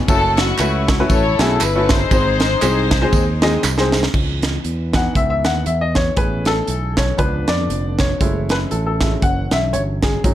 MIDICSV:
0, 0, Header, 1, 6, 480
1, 0, Start_track
1, 0, Key_signature, 4, "minor"
1, 0, Tempo, 507614
1, 81, Time_signature, 4, 2, 24, 8
1, 9778, End_track
2, 0, Start_track
2, 0, Title_t, "String section"
2, 0, Program_c, 0, 48
2, 82, Note_on_c, 0, 69, 121
2, 90, Note_on_c, 0, 61, 86
2, 90, Note_on_c, 0, 64, 86
2, 340, Note_off_c, 0, 69, 0
2, 351, Note_off_c, 0, 61, 0
2, 358, Note_on_c, 0, 66, 104
2, 362, Note_on_c, 0, 61, 75
2, 364, Note_on_c, 0, 57, 78
2, 837, Note_off_c, 0, 66, 0
2, 1006, Note_off_c, 0, 64, 0
2, 1042, Note_on_c, 0, 64, 93
2, 1044, Note_on_c, 0, 69, 89
2, 1052, Note_on_c, 0, 73, 113
2, 1281, Note_off_c, 0, 61, 0
2, 1282, Note_off_c, 0, 57, 0
2, 1304, Note_off_c, 0, 73, 0
2, 1316, Note_off_c, 0, 69, 0
2, 1327, Note_on_c, 0, 69, 101
2, 1523, Note_off_c, 0, 69, 0
2, 1528, Note_on_c, 0, 71, 109
2, 1801, Note_off_c, 0, 71, 0
2, 1811, Note_on_c, 0, 68, 73
2, 1812, Note_on_c, 0, 63, 80
2, 1817, Note_on_c, 0, 72, 110
2, 1961, Note_off_c, 0, 64, 0
2, 3405, Note_off_c, 0, 63, 0
2, 3405, Note_off_c, 0, 68, 0
2, 3446, Note_off_c, 0, 72, 0
2, 9778, End_track
3, 0, Start_track
3, 0, Title_t, "Grand piano"
3, 0, Program_c, 1, 0
3, 79, Note_on_c, 1, 57, 85
3, 80, Note_on_c, 1, 61, 71
3, 82, Note_on_c, 1, 64, 70
3, 85, Note_on_c, 1, 66, 73
3, 88, Note_on_c, 1, 69, 91
3, 382, Note_off_c, 1, 57, 0
3, 382, Note_off_c, 1, 61, 0
3, 383, Note_off_c, 1, 64, 0
3, 384, Note_off_c, 1, 66, 0
3, 386, Note_off_c, 1, 69, 0
3, 555, Note_on_c, 1, 61, 60
3, 557, Note_on_c, 1, 57, 78
3, 561, Note_on_c, 1, 64, 67
3, 563, Note_on_c, 1, 66, 61
3, 565, Note_on_c, 1, 71, 76
3, 790, Note_off_c, 1, 61, 0
3, 791, Note_off_c, 1, 57, 0
3, 794, Note_off_c, 1, 64, 0
3, 794, Note_off_c, 1, 66, 0
3, 795, Note_off_c, 1, 71, 0
3, 937, Note_on_c, 1, 57, 70
3, 941, Note_on_c, 1, 61, 77
3, 941, Note_on_c, 1, 64, 66
3, 943, Note_on_c, 1, 66, 66
3, 946, Note_on_c, 1, 71, 85
3, 1132, Note_off_c, 1, 57, 0
3, 1134, Note_off_c, 1, 61, 0
3, 1134, Note_off_c, 1, 64, 0
3, 1135, Note_off_c, 1, 66, 0
3, 1137, Note_off_c, 1, 71, 0
3, 1321, Note_on_c, 1, 57, 77
3, 1325, Note_on_c, 1, 61, 76
3, 1327, Note_on_c, 1, 64, 65
3, 1330, Note_on_c, 1, 66, 69
3, 1333, Note_on_c, 1, 68, 87
3, 1487, Note_off_c, 1, 57, 0
3, 1489, Note_off_c, 1, 61, 0
3, 1491, Note_off_c, 1, 64, 0
3, 1492, Note_off_c, 1, 66, 0
3, 1494, Note_off_c, 1, 68, 0
3, 1658, Note_on_c, 1, 57, 76
3, 1660, Note_on_c, 1, 61, 71
3, 1662, Note_on_c, 1, 64, 73
3, 1662, Note_on_c, 1, 66, 62
3, 1667, Note_on_c, 1, 69, 77
3, 1865, Note_off_c, 1, 57, 0
3, 1865, Note_off_c, 1, 61, 0
3, 1866, Note_off_c, 1, 64, 0
3, 1866, Note_off_c, 1, 66, 0
3, 1869, Note_off_c, 1, 69, 0
3, 2000, Note_on_c, 1, 60, 64
3, 2001, Note_on_c, 1, 56, 76
3, 2004, Note_on_c, 1, 44, 65
3, 2006, Note_on_c, 1, 63, 72
3, 2006, Note_on_c, 1, 68, 62
3, 2012, Note_on_c, 1, 72, 91
3, 2300, Note_off_c, 1, 56, 0
3, 2300, Note_off_c, 1, 60, 0
3, 2303, Note_off_c, 1, 63, 0
3, 2303, Note_off_c, 1, 68, 0
3, 2306, Note_off_c, 1, 72, 0
3, 2475, Note_on_c, 1, 56, 92
3, 2480, Note_on_c, 1, 63, 82
3, 2481, Note_on_c, 1, 60, 81
3, 2482, Note_on_c, 1, 68, 78
3, 2483, Note_on_c, 1, 72, 98
3, 2708, Note_off_c, 1, 56, 0
3, 2711, Note_off_c, 1, 60, 0
3, 2711, Note_off_c, 1, 63, 0
3, 2712, Note_off_c, 1, 68, 0
3, 2712, Note_off_c, 1, 72, 0
3, 2719, Note_off_c, 1, 44, 0
3, 2852, Note_on_c, 1, 56, 95
3, 2854, Note_on_c, 1, 60, 83
3, 2859, Note_on_c, 1, 72, 105
3, 2860, Note_on_c, 1, 63, 88
3, 2861, Note_on_c, 1, 68, 93
3, 3048, Note_off_c, 1, 56, 0
3, 3049, Note_off_c, 1, 60, 0
3, 3051, Note_off_c, 1, 72, 0
3, 3052, Note_off_c, 1, 63, 0
3, 3052, Note_off_c, 1, 68, 0
3, 3234, Note_on_c, 1, 60, 85
3, 3235, Note_on_c, 1, 56, 97
3, 3240, Note_on_c, 1, 63, 81
3, 3240, Note_on_c, 1, 68, 78
3, 3245, Note_on_c, 1, 75, 100
3, 3403, Note_off_c, 1, 56, 0
3, 3403, Note_off_c, 1, 60, 0
3, 3405, Note_off_c, 1, 68, 0
3, 3406, Note_off_c, 1, 63, 0
3, 3408, Note_off_c, 1, 75, 0
3, 3568, Note_on_c, 1, 60, 80
3, 3570, Note_on_c, 1, 56, 92
3, 3570, Note_on_c, 1, 63, 77
3, 3575, Note_on_c, 1, 68, 76
3, 3579, Note_on_c, 1, 72, 100
3, 3778, Note_off_c, 1, 60, 0
3, 3779, Note_off_c, 1, 56, 0
3, 3779, Note_off_c, 1, 63, 0
3, 3782, Note_off_c, 1, 68, 0
3, 3784, Note_off_c, 1, 72, 0
3, 4666, Note_on_c, 1, 52, 54
3, 4672, Note_on_c, 1, 59, 46
3, 4677, Note_on_c, 1, 63, 51
3, 4683, Note_on_c, 1, 78, 95
3, 4882, Note_on_c, 1, 76, 93
3, 4886, Note_off_c, 1, 78, 0
3, 4999, Note_off_c, 1, 76, 0
3, 5013, Note_on_c, 1, 76, 86
3, 5149, Note_on_c, 1, 78, 94
3, 5157, Note_off_c, 1, 76, 0
3, 5318, Note_off_c, 1, 52, 0
3, 5321, Note_off_c, 1, 59, 0
3, 5324, Note_off_c, 1, 63, 0
3, 5356, Note_on_c, 1, 76, 76
3, 5360, Note_off_c, 1, 78, 0
3, 5486, Note_off_c, 1, 76, 0
3, 5497, Note_on_c, 1, 75, 88
3, 5633, Note_on_c, 1, 73, 84
3, 5640, Note_off_c, 1, 75, 0
3, 5829, Note_on_c, 1, 68, 56
3, 5834, Note_on_c, 1, 59, 47
3, 5837, Note_on_c, 1, 61, 61
3, 5839, Note_on_c, 1, 71, 87
3, 5842, Note_off_c, 1, 73, 0
3, 6119, Note_on_c, 1, 69, 100
3, 6125, Note_off_c, 1, 71, 0
3, 6595, Note_on_c, 1, 73, 82
3, 6613, Note_off_c, 1, 69, 0
3, 6758, Note_off_c, 1, 68, 0
3, 6760, Note_off_c, 1, 59, 0
3, 6762, Note_off_c, 1, 61, 0
3, 6784, Note_on_c, 1, 53, 51
3, 6789, Note_on_c, 1, 59, 50
3, 6795, Note_on_c, 1, 62, 59
3, 6795, Note_on_c, 1, 71, 79
3, 6804, Note_off_c, 1, 73, 0
3, 7076, Note_on_c, 1, 74, 91
3, 7084, Note_off_c, 1, 71, 0
3, 7562, Note_on_c, 1, 73, 78
3, 7573, Note_off_c, 1, 74, 0
3, 7716, Note_off_c, 1, 53, 0
3, 7718, Note_off_c, 1, 59, 0
3, 7722, Note_off_c, 1, 62, 0
3, 7763, Note_on_c, 1, 56, 57
3, 7765, Note_on_c, 1, 57, 52
3, 7772, Note_on_c, 1, 64, 58
3, 8008, Note_off_c, 1, 73, 0
3, 8051, Note_on_c, 1, 71, 79
3, 8099, Note_off_c, 1, 71, 0
3, 8238, Note_on_c, 1, 69, 67
3, 8369, Note_off_c, 1, 69, 0
3, 8383, Note_on_c, 1, 69, 73
3, 8507, Note_off_c, 1, 56, 0
3, 8513, Note_off_c, 1, 57, 0
3, 8515, Note_off_c, 1, 64, 0
3, 8521, Note_on_c, 1, 56, 46
3, 8527, Note_on_c, 1, 57, 44
3, 8529, Note_on_c, 1, 64, 52
3, 8606, Note_off_c, 1, 69, 0
3, 8703, Note_off_c, 1, 56, 0
3, 8706, Note_off_c, 1, 57, 0
3, 8708, Note_off_c, 1, 64, 0
3, 8727, Note_on_c, 1, 78, 91
3, 9006, Note_on_c, 1, 76, 82
3, 9012, Note_off_c, 1, 78, 0
3, 9201, Note_on_c, 1, 73, 78
3, 9212, Note_off_c, 1, 76, 0
3, 9264, Note_off_c, 1, 73, 0
3, 9487, Note_on_c, 1, 68, 68
3, 9683, Note_on_c, 1, 54, 58
3, 9690, Note_on_c, 1, 61, 52
3, 9695, Note_on_c, 1, 63, 57
3, 9778, Note_off_c, 1, 54, 0
3, 9778, Note_off_c, 1, 61, 0
3, 9778, Note_off_c, 1, 63, 0
3, 9778, Note_off_c, 1, 68, 0
3, 9778, End_track
4, 0, Start_track
4, 0, Title_t, "Brass ensemble"
4, 0, Program_c, 2, 61
4, 3910, Note_on_c, 2, 59, 68
4, 3913, Note_on_c, 2, 52, 82
4, 5815, Note_off_c, 2, 59, 0
4, 5817, Note_off_c, 2, 52, 0
4, 5841, Note_on_c, 2, 52, 72
4, 5841, Note_on_c, 2, 57, 67
4, 6792, Note_off_c, 2, 52, 0
4, 6792, Note_off_c, 2, 57, 0
4, 6801, Note_on_c, 2, 53, 66
4, 6801, Note_on_c, 2, 59, 66
4, 6803, Note_on_c, 2, 50, 75
4, 7753, Note_off_c, 2, 53, 0
4, 7753, Note_off_c, 2, 59, 0
4, 7754, Note_off_c, 2, 50, 0
4, 7763, Note_on_c, 2, 52, 77
4, 7763, Note_on_c, 2, 61, 64
4, 7766, Note_on_c, 2, 54, 78
4, 9666, Note_off_c, 2, 61, 0
4, 9667, Note_off_c, 2, 52, 0
4, 9687, Note_on_c, 2, 56, 73
4, 9688, Note_on_c, 2, 51, 76
4, 9778, Note_off_c, 2, 51, 0
4, 9778, Note_off_c, 2, 54, 0
4, 9778, Note_off_c, 2, 56, 0
4, 9778, End_track
5, 0, Start_track
5, 0, Title_t, "Fingered electric bass"
5, 0, Program_c, 3, 33
5, 80, Note_on_c, 3, 30, 121
5, 488, Note_off_c, 3, 30, 0
5, 560, Note_on_c, 3, 37, 85
5, 967, Note_off_c, 3, 37, 0
5, 1038, Note_on_c, 3, 33, 114
5, 1275, Note_off_c, 3, 33, 0
5, 1318, Note_on_c, 3, 35, 104
5, 1488, Note_off_c, 3, 35, 0
5, 1523, Note_on_c, 3, 31, 94
5, 1928, Note_off_c, 3, 31, 0
5, 1997, Note_on_c, 3, 32, 98
5, 2404, Note_off_c, 3, 32, 0
5, 2481, Note_on_c, 3, 36, 97
5, 2886, Note_off_c, 3, 36, 0
5, 2959, Note_on_c, 3, 39, 106
5, 3365, Note_off_c, 3, 39, 0
5, 3439, Note_on_c, 3, 36, 88
5, 3845, Note_off_c, 3, 36, 0
5, 3913, Note_on_c, 3, 37, 106
5, 4322, Note_off_c, 3, 37, 0
5, 4394, Note_on_c, 3, 40, 68
5, 4803, Note_off_c, 3, 40, 0
5, 4875, Note_on_c, 3, 37, 79
5, 5154, Note_off_c, 3, 37, 0
5, 5154, Note_on_c, 3, 39, 76
5, 5326, Note_off_c, 3, 39, 0
5, 5356, Note_on_c, 3, 40, 83
5, 5765, Note_off_c, 3, 40, 0
5, 5835, Note_on_c, 3, 33, 96
5, 6245, Note_off_c, 3, 33, 0
5, 6318, Note_on_c, 3, 35, 97
5, 6727, Note_off_c, 3, 35, 0
5, 6797, Note_on_c, 3, 37, 98
5, 7035, Note_off_c, 3, 37, 0
5, 7075, Note_on_c, 3, 41, 82
5, 7248, Note_off_c, 3, 41, 0
5, 7277, Note_on_c, 3, 29, 91
5, 7687, Note_off_c, 3, 29, 0
5, 7759, Note_on_c, 3, 30, 102
5, 8169, Note_off_c, 3, 30, 0
5, 8245, Note_on_c, 3, 33, 88
5, 8653, Note_off_c, 3, 33, 0
5, 8721, Note_on_c, 3, 30, 91
5, 8959, Note_off_c, 3, 30, 0
5, 9000, Note_on_c, 3, 35, 92
5, 9204, Note_on_c, 3, 31, 77
5, 9218, Note_off_c, 3, 35, 0
5, 9612, Note_off_c, 3, 31, 0
5, 9685, Note_on_c, 3, 32, 113
5, 9778, Note_off_c, 3, 32, 0
5, 9778, End_track
6, 0, Start_track
6, 0, Title_t, "Drums"
6, 80, Note_on_c, 9, 36, 126
6, 81, Note_on_c, 9, 51, 85
6, 81, Note_on_c, 9, 54, 81
6, 174, Note_off_c, 9, 36, 0
6, 175, Note_off_c, 9, 51, 0
6, 176, Note_off_c, 9, 54, 0
6, 352, Note_on_c, 9, 51, 53
6, 360, Note_on_c, 9, 38, 115
6, 362, Note_on_c, 9, 54, 60
6, 447, Note_off_c, 9, 51, 0
6, 454, Note_off_c, 9, 38, 0
6, 457, Note_off_c, 9, 54, 0
6, 551, Note_on_c, 9, 39, 86
6, 551, Note_on_c, 9, 54, 75
6, 553, Note_on_c, 9, 51, 76
6, 646, Note_off_c, 9, 39, 0
6, 646, Note_off_c, 9, 54, 0
6, 647, Note_off_c, 9, 51, 0
6, 836, Note_on_c, 9, 38, 123
6, 836, Note_on_c, 9, 51, 80
6, 838, Note_on_c, 9, 36, 106
6, 842, Note_on_c, 9, 54, 52
6, 931, Note_off_c, 9, 38, 0
6, 931, Note_off_c, 9, 51, 0
6, 932, Note_off_c, 9, 36, 0
6, 937, Note_off_c, 9, 54, 0
6, 1036, Note_on_c, 9, 51, 68
6, 1038, Note_on_c, 9, 36, 98
6, 1038, Note_on_c, 9, 54, 68
6, 1131, Note_off_c, 9, 51, 0
6, 1132, Note_off_c, 9, 54, 0
6, 1133, Note_off_c, 9, 36, 0
6, 1315, Note_on_c, 9, 51, 61
6, 1317, Note_on_c, 9, 38, 102
6, 1327, Note_on_c, 9, 54, 49
6, 1409, Note_off_c, 9, 51, 0
6, 1412, Note_off_c, 9, 38, 0
6, 1421, Note_off_c, 9, 54, 0
6, 1518, Note_on_c, 9, 51, 78
6, 1520, Note_on_c, 9, 39, 119
6, 1520, Note_on_c, 9, 54, 122
6, 1613, Note_off_c, 9, 51, 0
6, 1614, Note_off_c, 9, 39, 0
6, 1614, Note_off_c, 9, 54, 0
6, 1789, Note_on_c, 9, 38, 103
6, 1790, Note_on_c, 9, 51, 61
6, 1800, Note_on_c, 9, 36, 101
6, 1802, Note_on_c, 9, 54, 57
6, 1883, Note_off_c, 9, 38, 0
6, 1885, Note_off_c, 9, 51, 0
6, 1895, Note_off_c, 9, 36, 0
6, 1896, Note_off_c, 9, 54, 0
6, 1997, Note_on_c, 9, 36, 106
6, 1997, Note_on_c, 9, 51, 77
6, 2002, Note_on_c, 9, 54, 81
6, 2091, Note_off_c, 9, 36, 0
6, 2091, Note_off_c, 9, 51, 0
6, 2097, Note_off_c, 9, 54, 0
6, 2267, Note_on_c, 9, 51, 60
6, 2274, Note_on_c, 9, 38, 109
6, 2289, Note_on_c, 9, 54, 56
6, 2361, Note_off_c, 9, 51, 0
6, 2369, Note_off_c, 9, 38, 0
6, 2383, Note_off_c, 9, 54, 0
6, 2474, Note_on_c, 9, 51, 75
6, 2478, Note_on_c, 9, 39, 84
6, 2478, Note_on_c, 9, 54, 85
6, 2569, Note_off_c, 9, 51, 0
6, 2572, Note_off_c, 9, 39, 0
6, 2572, Note_off_c, 9, 54, 0
6, 2753, Note_on_c, 9, 38, 117
6, 2753, Note_on_c, 9, 51, 84
6, 2756, Note_on_c, 9, 36, 116
6, 2762, Note_on_c, 9, 54, 53
6, 2847, Note_off_c, 9, 38, 0
6, 2847, Note_off_c, 9, 51, 0
6, 2851, Note_off_c, 9, 36, 0
6, 2857, Note_off_c, 9, 54, 0
6, 2956, Note_on_c, 9, 51, 64
6, 2957, Note_on_c, 9, 36, 105
6, 2959, Note_on_c, 9, 54, 75
6, 3051, Note_off_c, 9, 51, 0
6, 3052, Note_off_c, 9, 36, 0
6, 3053, Note_off_c, 9, 54, 0
6, 3232, Note_on_c, 9, 51, 57
6, 3234, Note_on_c, 9, 38, 118
6, 3242, Note_on_c, 9, 54, 45
6, 3327, Note_off_c, 9, 51, 0
6, 3329, Note_off_c, 9, 38, 0
6, 3337, Note_off_c, 9, 54, 0
6, 3433, Note_on_c, 9, 38, 61
6, 3441, Note_on_c, 9, 39, 123
6, 3441, Note_on_c, 9, 54, 113
6, 3528, Note_off_c, 9, 38, 0
6, 3535, Note_off_c, 9, 39, 0
6, 3535, Note_off_c, 9, 54, 0
6, 3572, Note_on_c, 9, 38, 69
6, 3666, Note_off_c, 9, 38, 0
6, 3711, Note_on_c, 9, 38, 94
6, 3724, Note_on_c, 9, 54, 64
6, 3805, Note_off_c, 9, 38, 0
6, 3810, Note_on_c, 9, 38, 96
6, 3818, Note_off_c, 9, 54, 0
6, 3905, Note_off_c, 9, 38, 0
6, 3914, Note_on_c, 9, 49, 85
6, 3915, Note_on_c, 9, 36, 107
6, 4009, Note_off_c, 9, 36, 0
6, 4009, Note_off_c, 9, 49, 0
6, 4183, Note_on_c, 9, 42, 66
6, 4191, Note_on_c, 9, 38, 94
6, 4278, Note_off_c, 9, 42, 0
6, 4285, Note_off_c, 9, 38, 0
6, 4392, Note_on_c, 9, 42, 78
6, 4487, Note_off_c, 9, 42, 0
6, 4666, Note_on_c, 9, 38, 105
6, 4666, Note_on_c, 9, 42, 87
6, 4673, Note_on_c, 9, 36, 97
6, 4761, Note_off_c, 9, 38, 0
6, 4761, Note_off_c, 9, 42, 0
6, 4767, Note_off_c, 9, 36, 0
6, 4874, Note_on_c, 9, 36, 98
6, 4874, Note_on_c, 9, 42, 76
6, 4969, Note_off_c, 9, 36, 0
6, 4969, Note_off_c, 9, 42, 0
6, 5148, Note_on_c, 9, 42, 66
6, 5151, Note_on_c, 9, 38, 97
6, 5243, Note_off_c, 9, 42, 0
6, 5245, Note_off_c, 9, 38, 0
6, 5352, Note_on_c, 9, 42, 82
6, 5446, Note_off_c, 9, 42, 0
6, 5628, Note_on_c, 9, 38, 92
6, 5629, Note_on_c, 9, 42, 71
6, 5639, Note_on_c, 9, 36, 83
6, 5723, Note_off_c, 9, 38, 0
6, 5724, Note_off_c, 9, 42, 0
6, 5733, Note_off_c, 9, 36, 0
6, 5830, Note_on_c, 9, 42, 94
6, 5835, Note_on_c, 9, 36, 111
6, 5925, Note_off_c, 9, 42, 0
6, 5930, Note_off_c, 9, 36, 0
6, 6103, Note_on_c, 9, 42, 69
6, 6110, Note_on_c, 9, 38, 101
6, 6197, Note_off_c, 9, 42, 0
6, 6205, Note_off_c, 9, 38, 0
6, 6312, Note_on_c, 9, 42, 82
6, 6406, Note_off_c, 9, 42, 0
6, 6591, Note_on_c, 9, 38, 106
6, 6591, Note_on_c, 9, 42, 86
6, 6597, Note_on_c, 9, 36, 88
6, 6685, Note_off_c, 9, 38, 0
6, 6685, Note_off_c, 9, 42, 0
6, 6691, Note_off_c, 9, 36, 0
6, 6793, Note_on_c, 9, 42, 76
6, 6798, Note_on_c, 9, 36, 95
6, 6888, Note_off_c, 9, 42, 0
6, 6892, Note_off_c, 9, 36, 0
6, 7069, Note_on_c, 9, 42, 68
6, 7071, Note_on_c, 9, 38, 115
6, 7164, Note_off_c, 9, 42, 0
6, 7166, Note_off_c, 9, 38, 0
6, 7282, Note_on_c, 9, 42, 83
6, 7376, Note_off_c, 9, 42, 0
6, 7552, Note_on_c, 9, 38, 98
6, 7553, Note_on_c, 9, 42, 68
6, 7564, Note_on_c, 9, 36, 78
6, 7646, Note_off_c, 9, 38, 0
6, 7647, Note_off_c, 9, 42, 0
6, 7658, Note_off_c, 9, 36, 0
6, 7760, Note_on_c, 9, 42, 95
6, 7761, Note_on_c, 9, 36, 104
6, 7855, Note_off_c, 9, 36, 0
6, 7855, Note_off_c, 9, 42, 0
6, 8031, Note_on_c, 9, 42, 64
6, 8039, Note_on_c, 9, 38, 106
6, 8125, Note_off_c, 9, 42, 0
6, 8133, Note_off_c, 9, 38, 0
6, 8236, Note_on_c, 9, 42, 80
6, 8331, Note_off_c, 9, 42, 0
6, 8516, Note_on_c, 9, 38, 107
6, 8516, Note_on_c, 9, 42, 91
6, 8521, Note_on_c, 9, 36, 104
6, 8610, Note_off_c, 9, 38, 0
6, 8610, Note_off_c, 9, 42, 0
6, 8615, Note_off_c, 9, 36, 0
6, 8721, Note_on_c, 9, 42, 68
6, 8722, Note_on_c, 9, 36, 105
6, 8816, Note_off_c, 9, 42, 0
6, 8817, Note_off_c, 9, 36, 0
6, 8995, Note_on_c, 9, 42, 67
6, 8997, Note_on_c, 9, 38, 111
6, 9089, Note_off_c, 9, 42, 0
6, 9091, Note_off_c, 9, 38, 0
6, 9205, Note_on_c, 9, 42, 89
6, 9300, Note_off_c, 9, 42, 0
6, 9480, Note_on_c, 9, 38, 103
6, 9481, Note_on_c, 9, 42, 71
6, 9488, Note_on_c, 9, 36, 87
6, 9574, Note_off_c, 9, 38, 0
6, 9576, Note_off_c, 9, 42, 0
6, 9583, Note_off_c, 9, 36, 0
6, 9685, Note_on_c, 9, 36, 116
6, 9687, Note_on_c, 9, 42, 98
6, 9778, Note_off_c, 9, 36, 0
6, 9778, Note_off_c, 9, 42, 0
6, 9778, End_track
0, 0, End_of_file